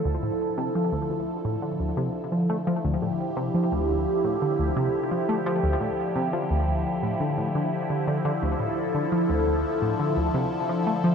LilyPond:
<<
  \new Staff \with { instrumentName = "Analog synth pad" } { \time 4/4 \key d \minor \tempo 4 = 86 << { a'1 | g'1~ | g'1 | a'1 | } \\ { <d f e'>1~ | <d f e'>1~ | <d f e'>1~ | <d f e'>1 | } >> }
  \new Staff \with { instrumentName = "Synth arpeggio sound" } { \clef bass \time 4/4 \key d \minor d,16 a,16 r16 c16 f16 d,16 d,16 r16 a,16 d16 d,16 c16 r16 f16 a16 f16 | d,16 a,16 r16 c16 f16 d,16 d,16 r16 a,16 d16 d,16 c16 r16 f16 a16 f16 | d,16 a,16 r16 c16 f16 d,16 d,16 r16 a,16 d16 a,16 d16 r16 d16 d16 d16 | d,16 a,16 r16 d16 f16 d,16 d,16 r16 a,16 d16 d,16 c16 r16 f16 a16 f16 | }
>>